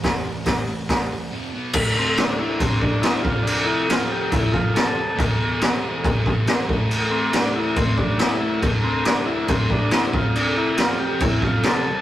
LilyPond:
<<
  \new Staff \with { instrumentName = "Transistor combo organ" } { \time 4/4 \key a \minor \tempo 4 = 140 r1 | \key d \dorian r8 c'8 d'8 e'8 c'8 d'8 e'8 f'8 | d'8 e'8 f'8 g'8 e'8 f'8 a'4 | r1 |
r8 c'8 d'8 e'8 c'8 d'8 e'8 e'8 | r8 c'8 d'8 e'8 c'8 d'8 e'8 f'8 | d'8 e'8 f'8 g'8 e'8 f'8 a'4 | }
  \new Staff \with { instrumentName = "Distorted electric guitar" } { \clef bass \time 4/4 \key a \minor <a, e>8 <a, e>8 <a, e>8 <a, e>8 <a, e>8 <a, e>8 <f, c f>8 <b, fis b>8 | \key d \dorian <d a d'>4. <d a d'>2 <f, c f>8~ | <f, c f>4 <f, c f>2~ <f, c f>8 r8 | <e, b, e>4. <e, b, e>2 <a, e a>8~ |
<a, e a>4 <a, e a>2~ <a, e a>8 r8 | <d a d'>4. <d a d'>2 <f, c f>8~ | <f, c f>4 <f, c f>2~ <f, c f>8 r8 | }
  \new DrumStaff \with { instrumentName = "Drums" } \drummode { \time 4/4 <hho bd sn>4 <hho bd sn>4 <hho bd sn>4 r4 | <cymc bd>4 <cymc sn>4 <cymc bd>8 bd8 <cymc sn>8 bd8 | cymc4 <cymc sn>4 <cymc bd>8 bd8 <cymc sn>4 | <cymc bd>4 <cymc sn>4 <cymc bd>8 bd8 <cymc sn>8 bd8 |
cymc4 <cymc sn>4 <cymc bd>8 bd8 <cymc sn>4 | <cymc bd>4 <cymc sn>4 <cymc bd>8 bd8 <cymc sn>8 bd8 | cymc4 <cymc sn>4 <cymc bd>8 bd8 <cymc sn>4 | }
>>